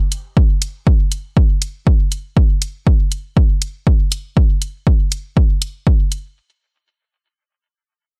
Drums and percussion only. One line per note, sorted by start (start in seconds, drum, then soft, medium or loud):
0.12 closed hi-hat medium
0.37 kick loud
0.62 closed hi-hat medium
0.87 kick loud
1.12 closed hi-hat medium
1.37 kick loud
1.62 closed hi-hat medium
1.87 kick medium
2.12 closed hi-hat medium
2.37 kick loud
2.62 closed hi-hat medium
2.87 kick loud
3.12 closed hi-hat medium
3.37 kick loud
3.62 closed hi-hat medium
3.87 kick medium
4.12 closed hi-hat medium
4.37 kick loud
4.62 closed hi-hat medium
4.87 kick loud
5.12 closed hi-hat medium
5.37 kick loud
5.62 closed hi-hat medium
5.87 kick loud
6.12 closed hi-hat medium